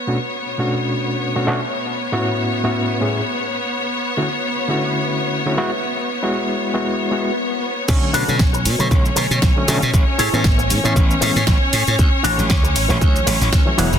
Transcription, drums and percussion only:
7.88 kick, crash, shaker
8.14 open hi-hat, shaker
8.28 shaker
8.39 kick, snare, shaker
8.54 shaker
8.66 open hi-hat, shaker
8.80 shaker
8.91 kick, shaker
9.05 shaker
9.17 open hi-hat, shaker
9.31 shaker
9.42 kick, snare, shaker
9.68 open hi-hat, shaker
9.82 shaker
9.94 kick, shaker
10.19 open hi-hat, shaker
10.34 shaker
10.44 kick, snare, shaker
10.59 shaker
10.70 open hi-hat, shaker
10.85 shaker
10.96 kick, shaker
11.11 shaker
11.22 open hi-hat, shaker
11.36 shaker
11.47 kick, snare, shaker
11.73 open hi-hat, shaker
11.87 shaker
11.99 kick, shaker
12.25 open hi-hat, shaker
12.39 shaker
12.50 kick, snare, shaker
12.64 shaker
12.76 open hi-hat, shaker
12.90 shaker
13.02 kick, shaker
13.16 shaker
13.27 open hi-hat, shaker
13.42 shaker
13.53 kick, snare, shaker
13.79 open hi-hat, shaker
13.93 shaker

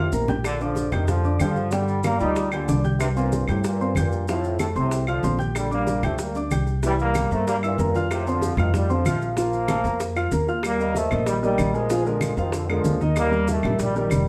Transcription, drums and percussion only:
0.12 low bongo, maracas
0.28 low bongo, low conga, maracas
0.44 high bongo, high conga, claves, maracas
0.59 high conga, maracas
0.75 high bongo, high conga, maracas
0.92 high bongo, high conga, low conga, claves, maracas
1.08 high bongo, high conga, low conga, maracas
1.24 high bongo, high conga, maracas
1.40 high bongo, low bongo, high conga, claves, maracas
1.56 high bongo, high conga, maracas
1.71 high bongo, high conga, maracas
1.88 high conga, maracas
2.03 high bongo, high conga, claves, maracas
2.20 high bongo, maracas
2.36 high bongo, high conga, maracas
2.52 high bongo, high conga, claves, maracas
2.68 high bongo, low bongo, high conga, maracas
2.84 high bongo, high conga, maracas
3.00 high bongo, claves, maracas
3.16 high conga, maracas
3.32 high bongo, high conga, maracas
3.48 high bongo, high conga, low conga, claves, maracas
3.64 high bongo, high conga, maracas
3.80 high bongo, high conga, maracas
3.95 high bongo, low bongo, high conga, claves, maracas
4.12 high bongo, high conga, maracas
4.28 high bongo, high conga, maracas
4.43 high conga, maracas
4.59 high bongo, high conga, claves, maracas
4.76 high bongo, maracas
4.91 high bongo, high conga, maracas
5.07 high bongo, high conga, claves, maracas
5.23 high bongo, low bongo, high conga, maracas
5.39 high bongo, high conga, maracas
5.55 high bongo, high conga, claves, maracas
5.71 high conga, maracas
5.87 high bongo, high conga, maracas
6.03 high bongo, high conga, low conga, claves, maracas
6.18 high bongo, high conga, maracas
6.35 high bongo, high conga, maracas
6.51 high bongo, low bongo, high conga, claves, maracas
6.67 high bongo, high conga, maracas
6.83 high bongo, high conga, maracas
6.99 high conga, maracas
7.15 high bongo, high conga, claves, maracas
7.31 high bongo, maracas
7.47 high bongo, high conga, maracas
7.63 high bongo, high conga, claves, maracas
7.78 high bongo, low bongo, high conga, maracas
7.94 high bongo, high conga, maracas
8.11 high bongo, high conga, claves, maracas
8.26 high conga, maracas
8.41 high bongo, high conga, maracas
8.57 high bongo, high conga, low conga, claves, maracas
8.74 high bongo, high conga, low conga, maracas
8.90 high bongo, high conga, maracas
9.05 high bongo, low bongo, high conga, claves, maracas
9.21 high bongo, high conga, maracas
9.37 high bongo, high conga, maracas
9.53 high conga, maracas
9.68 high bongo, high conga, claves, maracas
9.84 high bongo, maracas
10.00 high bongo, high conga, maracas
10.15 high bongo, high conga, claves, maracas
10.31 high bongo, low bongo, high conga, maracas
10.47 high bongo, maracas
10.63 high bongo, high conga, claves, maracas
10.80 high conga, maracas
10.95 high bongo, high conga, maracas
11.11 high bongo, high conga, low conga, claves, maracas
11.26 high bongo, high conga, maracas
11.42 high bongo, high conga, maracas
11.58 high bongo, low bongo, high conga, claves, maracas
11.74 high bongo, high conga, maracas
11.90 high bongo, high conga, maracas
12.06 high conga, maracas
12.21 high bongo, high conga, claves, maracas
12.37 high bongo, maracas
12.52 high bongo, high conga, maracas
12.69 high bongo, high conga, claves, maracas
12.85 high bongo, low bongo, high conga, maracas
13.00 high bongo, high conga, maracas
13.16 high bongo, claves, maracas
13.32 high conga, maracas
13.48 high bongo, high conga, maracas
13.63 high bongo, high conga, low conga, claves, maracas
13.79 high bongo, high conga, low conga, maracas
13.95 high bongo, high conga, maracas
14.11 high bongo, low bongo, high conga, claves, maracas

